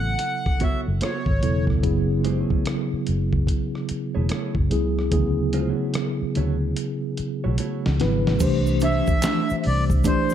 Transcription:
0.00 0.15 A1 medium
0.00 1.41 C#3 medium
0.00 1.42 F#3 medium
0.00 1.42 B3 medium
0.00 1.43 E4 medium
0.00 1.44 A4 medium
0.00 0.63 F#5 loud
0.19 muted clean electric guitar stroke soft
0.19 closed hi-hat medium
0.46 kick medium
0.46 cross-stick soft
0.60 0.85 B3 medium
0.60 0.86 F#4 medium
0.60 0.86 A4 medium
0.60 0.86 C#5 medium
0.60 0.81 E5 medium
0.60 muted fingered electric bass stroke soft
0.60 kick medium
0.60 closed hi-hat medium
0.88 1.00 F#1 medium
1.01 1.13 A#3 medium
1.01 1.27 F#4 medium
1.01 1.27 A4 medium
1.01 1.27 C#5 medium
1.01 1.65 C#5 medium
1.01 cross-stick medium
1.01 closed hi-hat medium
1.13 1.27 B3 medium
1.26 1.41 G#1 medium
1.26 kick medium
1.41 1.79 E1 medium
1.41 1.79 C#3 medium
1.41 1.79 F#3 medium
1.41 1.79 B3 medium
1.41 1.80 E4 medium
1.41 1.80 A4 medium
1.41 closed hi-hat medium
1.67 kick medium
1.67 cross-stick soft
1.82 2.43 F#1 medium
1.82 3.29 C#3 medium
1.82 3.29 F#3 medium
1.82 3.29 B3 medium
1.82 3.30 E4 medium
1.82 3.30 G#4 medium
1.82 kick medium
1.82 closed hi-hat medium
2.24 2.40 G#3 medium
2.24 2.40 D#4 medium
2.24 2.41 G4 medium
2.24 2.41 C5 medium
2.24 closed hi-hat medium
2.40 2.63 A3 medium
2.40 2.63 E4 medium
2.40 2.63 G#4 medium
2.40 2.63 C#5 medium
2.50 kick medium
2.66 cross-stick loud
2.66 closed hi-hat medium
2.93 muted fingered electric bass stroke soft
3.07 3.44 F#1 medium
3.07 closed hi-hat soft
3.33 kick medium
3.47 kick medium
3.47 closed hi-hat medium
3.75 cross-stick soft
3.89 muted fingered electric bass stroke soft
3.89 closed hi-hat medium
4.15 4.29 E1 medium
4.15 4.26 A3 soft
4.15 4.26 E4 soft
4.15 4.26 G#4 medium
4.15 4.26 C#5 medium
4.29 4.55 A3 medium
4.29 4.55 E4 medium
4.29 4.55 G#4 medium
4.29 4.55 C#5 medium
4.29 cross-stick medium
4.29 closed hi-hat medium
4.55 4.69 F#1 medium
4.55 kick medium
4.70 5.08 C#2 medium
4.70 5.07 C#3 medium
4.70 5.08 F#3 medium
4.70 5.08 B3 medium
4.70 5.08 E4 medium
4.70 5.08 G#4 medium
4.70 closed hi-hat medium
4.99 cross-stick soft
5.11 5.72 D2 medium
5.11 6.57 C#3 medium
5.11 5.20 E3 medium
5.11 6.58 B3 medium
5.11 6.58 E4 medium
5.11 6.59 G#4 medium
5.11 kick loud
5.11 closed hi-hat medium
5.18 6.61 F#3 medium
5.53 5.69 G#3 medium
5.53 5.70 D#4 medium
5.53 5.70 F4 medium
5.53 5.70 C5 medium
5.53 closed hi-hat medium
5.69 5.92 A3 medium
5.69 5.92 E4 medium
5.69 5.92 F#4 medium
5.69 5.92 C#5 medium
5.94 cross-stick loud
5.94 closed hi-hat medium
6.23 muted fingered electric bass stroke soft
6.35 6.73 D2 medium
6.35 6.55 A3 medium
6.35 6.56 E4 medium
6.35 6.56 F#4 medium
6.35 6.56 C#5 medium
6.35 closed hi-hat soft
6.76 closed hi-hat medium
7.17 muted fingered electric bass stroke soft
7.17 closed hi-hat medium
7.44 7.58 B1 medium
7.44 7.55 A3 soft
7.44 7.55 E4 medium
7.44 7.55 F#4 medium
7.44 7.55 C#5 medium
7.58 7.84 A3 medium
7.58 7.84 E4 medium
7.58 7.84 F#4 medium
7.58 7.84 C#5 medium
7.58 closed hi-hat medium
7.86 7.99 C#2 medium
7.86 snare medium
7.99 8.24 G#1 medium
7.99 8.36 C#3 medium
7.99 8.36 F#3 medium
7.99 8.37 B3 medium
7.99 8.37 E4 medium
7.99 8.37 B4 medium
7.99 snare medium
7.99 closed hi-hat soft
8.27 8.40 A1 medium
8.27 snare medium
8.40 9.00 C2 loud
8.40 9.86 E3 medium
8.40 9.87 A3 medium
8.40 9.87 D4 medium
8.40 9.87 G4 medium
8.40 9.87 C5 medium
8.40 kick loud
8.40 closed hi-hat medium
8.40 crash medium
8.40 shaker medium
8.66 shaker soft
8.80 9.21 A3 medium
8.80 9.21 D4 medium
8.80 9.21 E4 medium
8.80 9.21 C5 medium
8.80 9.56 E5 medium
8.80 closed hi-hat medium
8.80 shaker soft
9.07 kick medium
9.07 shaker soft
9.22 9.48 A3 medium
9.22 9.48 D4 medium
9.22 9.48 E4 medium
9.22 9.48 C5 medium
9.22 finger snap medium
9.22 snare loud
9.22 clap loud
9.22 closed hi-hat medium
9.22 shaker medium
9.50 muted fingered electric bass stroke soft
9.50 shaker soft
9.61 9.65 E5 medium
9.61 open hi-hat soft
9.67 10.02 C2 medium
9.67 9.85 D5 medium
9.90 kick medium
9.90 shaker soft
10.04 10.34 E3 medium
10.04 10.30 A3 medium
10.04 10.34 A3 medium
10.04 10.30 D4 medium
10.04 10.34 D4 medium
10.04 10.30 E4 medium
10.04 10.34 G4 medium
10.04 10.30 C5 medium
10.04 10.34 C5 medium
10.04 10.34 D5 medium
10.04 kick medium
10.04 closed hi-hat medium
10.04 shaker medium
10.30 shaker soft

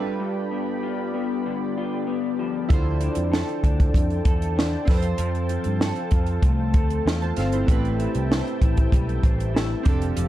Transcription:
0.00 0.18 G2 medium
0.00 2.34 G3 medium
0.00 2.34 D4 medium
0.00 2.35 F4 medium
0.00 2.68 G4 medium
0.00 2.36 A4 medium
0.00 2.36 B4 medium
0.00 4.85 D5 medium
0.00 7.65 G5 medium
0.00 2.69 B5 medium
0.20 2.69 G2 medium
0.51 1.13 B3 medium
0.83 1.77 F4 medium
1.14 2.06 B3 medium
1.46 2.70 D3 medium
1.78 3.01 F4 medium
2.07 2.76 B3 medium
2.39 4.87 F3 medium
2.68 3.08 D2 loud
2.68 4.87 D3 medium
2.68 4.83 E4 medium
2.68 4.84 F4 medium
2.68 4.87 A4 medium
2.68 4.85 A4 medium
2.68 10.28 A5 medium
2.68 kick loud
2.68 closed hi-hat medium
2.73 4.86 C5 medium
3.01 3.63 D4 medium
3.01 closed hi-hat medium
3.15 3.42 F2 medium
3.15 closed hi-hat medium
3.32 4.25 A4 medium
3.32 snare loud
3.49 closed hi-hat soft
3.64 3.89 D2 loud
3.64 4.55 D4 medium
3.64 kick medium
3.64 closed hi-hat medium
3.80 kick medium
3.80 closed hi-hat soft
3.94 4.20 F2 medium
3.94 kick medium
3.94 closed hi-hat medium
4.10 closed hi-hat soft
4.25 4.75 E2 medium
4.25 5.81 A4 medium
4.25 kick loud
4.25 closed hi-hat medium
4.42 closed hi-hat medium
4.57 4.94 D4 medium
4.57 snare loud
4.85 5.13 F2 medium
4.85 5.18 F3 medium
4.85 7.01 C4 medium
4.85 7.02 F4 medium
4.85 9.82 A4 medium
4.85 7.02 A4 medium
4.85 7.65 C5 medium
4.85 kick loud
4.85 open hi-hat medium
4.89 4.95 B4 medium
4.89 snare soft
4.97 7.06 C5 medium
5.02 closed hi-hat medium
5.18 5.56 F2 medium
5.18 7.68 F3 medium
5.18 closed hi-hat loud
5.35 closed hi-hat soft
5.49 6.12 F4 medium
5.49 closed hi-hat medium
5.64 5.91 G2 medium
5.64 closed hi-hat medium
5.81 6.74 A4 medium
5.81 snare loud
5.96 closed hi-hat soft
6.11 6.37 F2 loud
6.11 7.05 F4 medium
6.11 kick medium
6.11 closed hi-hat medium
6.26 closed hi-hat soft
6.42 6.74 C2 medium
6.42 8.92 A3 medium
6.42 kick loud
6.42 closed hi-hat medium
6.74 7.00 D2 medium
6.74 8.31 A4 medium
6.74 kick medium
6.74 closed hi-hat medium
6.90 closed hi-hat medium
7.06 7.31 E2 medium
7.06 7.75 F4 medium
7.06 snare loud
7.22 7.37 C5 soft
7.22 7.37 A5 medium
7.22 closed hi-hat soft
7.36 7.62 G1 medium
7.36 10.28 C4 medium
7.36 7.53 A4 medium
7.36 7.52 F5 medium
7.36 snare soft
7.36 closed hi-hat medium
7.52 7.66 E4 medium
7.52 7.83 C5 medium
7.52 closed hi-hat medium
7.66 8.06 A1 loud
7.66 9.92 A2 medium
7.66 7.74 B3 medium
7.66 9.82 E4 medium
7.66 9.83 G4 medium
7.66 9.84 E5 medium
7.66 9.84 G5 medium
7.66 kick loud
7.66 closed hi-hat loud
7.71 9.82 C4 medium
7.71 9.84 B4 medium
7.85 closed hi-hat soft
7.99 8.61 E4 medium
7.99 closed hi-hat medium
8.15 8.40 C2 medium
8.15 closed hi-hat medium
8.31 9.23 C5 medium
8.31 snare loud
8.47 closed hi-hat soft
8.62 8.87 A1 medium
8.62 9.53 E4 medium
8.62 kick medium
8.62 closed hi-hat medium
8.77 kick medium
8.77 closed hi-hat soft
8.92 9.18 B1 medium
8.92 9.92 G3 medium
8.92 kick medium
8.92 closed hi-hat medium
9.09 closed hi-hat soft
9.23 9.74 A1 medium
9.23 10.28 C5 medium
9.23 kick loud
9.23 closed hi-hat medium
9.40 closed hi-hat medium
9.54 9.92 E4 medium
9.54 snare loud
9.83 10.11 F1 medium
9.83 10.14 F3 medium
9.83 10.28 C4 medium
9.83 10.28 D4 medium
9.83 10.28 G4 medium
9.83 10.28 D5 medium
9.83 10.28 F5 medium
9.83 kick loud
9.83 closed hi-hat medium
9.87 10.28 A4 medium
10.02 closed hi-hat medium
10.14 10.28 F1 loud
10.14 10.28 F3 medium
10.14 closed hi-hat loud

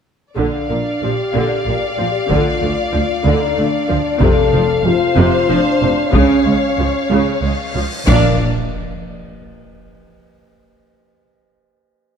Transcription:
0.36 0.45 A#1 soft
0.36 0.46 A#2 soft
0.36 0.67 D3 soft
0.36 0.99 D4 medium
0.36 4.81 D5 soft
0.36 4.17 F5 soft
0.36 taiko soft
0.70 0.78 A#1 soft
0.70 0.78 A#2 soft
0.70 0.78 A#3 soft
1.02 1.11 A#1 soft
1.02 1.11 A#2 soft
1.02 1.11 F3 soft
1.02 1.65 G4 medium
1.34 1.42 A#1 medium
1.34 1.43 A#2 soft
1.34 1.64 D3 medium
1.66 1.74 A#1 soft
1.66 1.75 A#2 soft
1.66 1.74 A#3 soft
1.66 1.87 G4 medium
1.88 2.09 G4 medium
1.98 2.07 A#1 soft
1.98 2.06 A#2 soft
1.98 2.06 F3 soft
2.10 2.30 G4 medium
2.29 2.38 D2 medium
2.29 2.39 D2 medium
2.29 2.59 D3 medium
2.29 3.26 F4 medium
2.29 taiko medium
2.61 2.70 D2 soft
2.61 2.71 D2 soft
2.61 2.69 A3 soft
2.93 3.02 D2 soft
2.93 3.01 F3 soft
3.24 3.34 D2 medium
3.24 3.54 D3 medium
3.24 3.57 D#4 medium
3.56 3.65 D2 soft
3.56 3.66 D2 soft
3.56 3.64 A3 medium
3.56 4.22 D4 medium
3.89 3.98 D2 soft
3.89 3.97 F3 soft
4.20 4.29 F1 medium
4.20 5.13 F2 medium
4.20 4.30 F2 medium
4.20 4.50 C3 medium
4.20 4.84 A4 loud
4.20 7.83 F5 medium
4.20 taiko medium
4.53 4.62 F1 medium
4.53 4.62 F2 medium
4.53 4.61 F3 medium
4.84 4.94 F1 soft
4.84 4.93 F2 soft
4.84 4.92 C3 soft
4.84 5.49 F4 medium
4.84 6.13 C5 medium
5.16 5.25 F1 medium
5.16 5.25 F2 medium
5.16 5.46 C3 medium
5.49 5.58 F1 soft
5.49 5.57 F2 soft
5.49 5.57 F3 medium
5.49 6.13 D4 loud
5.81 5.91 F1 soft
5.81 5.89 F2 soft
5.81 5.89 C3 medium
6.13 6.21 C#2 medium
6.13 6.22 C#2 medium
6.13 6.43 C#3 medium
6.13 7.43 C#4 medium
6.13 7.83 C#5 medium
6.13 taiko medium
6.13 cymbal swell medium
6.45 6.54 C#2 soft
6.45 6.53 G#3 soft
6.77 6.85 C#2 soft
6.77 6.86 C#2 soft
6.77 6.86 F3 soft
7.10 7.18 C#2 medium
7.10 7.40 C#3 medium
7.42 7.51 C#2 soft
7.42 7.50 G#3 soft
7.74 7.82 C#2 soft
7.74 7.83 C#2 soft
7.74 7.83 F3 soft
8.07 8.43 A#1 medium
8.07 8.43 A#2 medium
8.07 8.37 A#2 medium
8.07 8.34 A#3 medium
8.07 8.43 D4 medium
8.07 8.43 D5 medium
8.07 8.43 F5 medium
8.07 taiko loud
8.07 impact medium

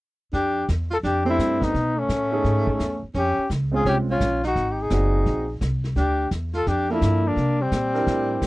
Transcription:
0.33 0.67 F2 medium
0.33 0.66 D4 medium
0.33 0.67 G4 medium
0.33 brush sweep soft
0.33 kick soft
0.33 snare soft
0.68 1.03 E2 medium
0.68 kick soft
0.68 snare soft
0.68 hi-hat pedal soft
0.90 0.96 F4 medium
0.90 0.98 A4 medium
0.90 snare soft
1.03 1.37 F2 medium
1.03 1.25 D4 medium
1.03 1.26 G4 medium
1.03 brush sweep soft
1.03 kick soft
1.03 snare soft
1.25 1.71 A3 medium
1.25 1.71 C4 soft
1.25 1.61 C4 medium
1.25 1.71 D4 soft
1.25 1.71 G4 medium
1.30 1.65 E4 medium
1.39 1.73 G2 medium
1.39 kick soft
1.39 snare medium
1.39 hi-hat pedal medium
1.60 1.97 B3 medium
1.60 2.00 D#4 medium
1.60 kick soft
1.60 snare soft
1.74 2.08 B2 medium
1.74 brush sweep soft
1.74 kick soft
1.74 snare soft
1.96 3.02 A3 medium
1.96 3.03 C#4 medium
2.09 2.43 A2 medium
2.09 kick soft
2.09 snare soft
2.09 hi-hat pedal medium
2.31 2.77 C#4 medium
2.31 2.77 D#4 medium
2.31 2.78 G#4 medium
2.31 2.77 A4 medium
2.44 2.78 G#2 medium
2.44 brush sweep soft
2.44 kick soft
2.44 snare soft
2.67 kick soft
2.79 3.01 E2 medium
2.79 kick soft
2.79 snare medium
2.79 hi-hat pedal soft
3.03 muted upright bass stroke soft
3.14 3.36 F2 medium
3.14 3.47 C#4 medium
3.14 3.49 G4 medium
3.14 brush sweep soft
3.14 kick soft
3.14 snare soft
3.38 muted upright bass stroke soft
3.50 3.84 C#2 medium
3.50 kick soft
3.50 snare soft
3.50 hi-hat pedal soft
3.72 4.17 G#3 medium
3.72 4.18 C4 soft
3.72 4.18 C#4 soft
3.72 4.18 F4 medium
3.72 3.85 F4 medium
3.72 3.85 G#4 medium
3.85 4.19 C2 medium
3.85 3.96 C#4 medium
3.85 3.98 G4 medium
3.85 brush sweep soft
3.85 kick soft
3.85 snare soft
4.10 4.42 C#4 medium
4.10 4.43 F4 medium
4.20 4.54 A#1 medium
4.20 kick soft
4.20 snare medium
4.20 hi-hat pedal medium
4.43 4.69 D#4 medium
4.43 4.74 F#4 medium
4.43 snare soft
4.55 4.90 G#1 medium
4.55 brush sweep soft
4.55 kick soft
4.55 snare soft
4.69 4.81 D#4 soft
4.69 4.84 G4 medium
4.81 5.55 D#4 medium
4.81 5.56 G#4 medium
4.90 5.25 F#1 medium
4.90 5.44 C4 soft
4.90 5.44 D#4 soft
4.90 5.45 F#4 medium
4.90 5.44 D5 soft
4.90 kick soft
4.90 snare soft
4.90 hi-hat pedal soft
5.26 5.60 A#1 medium
5.26 brush sweep soft
5.26 kick soft
5.26 snare soft
5.61 5.95 C2 medium
5.61 kick soft
5.61 snare medium
5.61 hi-hat pedal soft
5.84 snare soft
5.96 6.30 D2 medium
5.96 6.29 D4 medium
5.96 6.30 G4 medium
5.96 brush sweep soft
5.96 kick soft
5.96 snare soft
6.31 6.65 E2 medium
6.31 kick soft
6.31 snare soft
6.31 hi-hat pedal soft
6.53 6.69 F4 medium
6.53 6.70 A4 medium
6.53 snare soft
6.66 7.00 F2 medium
6.66 6.90 D4 medium
6.66 6.90 G4 medium
6.66 brush sweep soft
6.66 kick soft
6.66 snare soft
6.90 7.35 F3 medium
6.90 7.34 A#3 medium
6.90 7.26 A#3 medium
6.90 7.34 D4 soft
6.90 7.29 E4 medium
6.90 7.35 A4 medium
7.01 7.35 G2 medium
7.01 kick soft
7.01 snare medium
7.01 hi-hat pedal soft
7.26 7.62 A#3 medium
7.26 7.64 D4 medium
7.36 7.70 C3 medium
7.36 brush sweep soft
7.36 kick soft
7.36 snare soft
7.61 8.47 G3 medium
7.61 8.47 C4 medium
7.72 8.06 A#2 medium
7.72 kick soft
7.72 snare medium
7.72 hi-hat pedal soft
7.94 8.39 D4 medium
7.94 8.40 E4 medium
7.94 8.40 G4 medium
7.94 8.39 A#4 medium
7.94 snare soft
8.07 8.41 A2 medium
8.07 brush sweep soft
8.07 kick soft
8.07 snare soft
8.42 8.47 G2 medium
8.42 kick soft
8.42 snare medium
8.42 hi-hat pedal medium

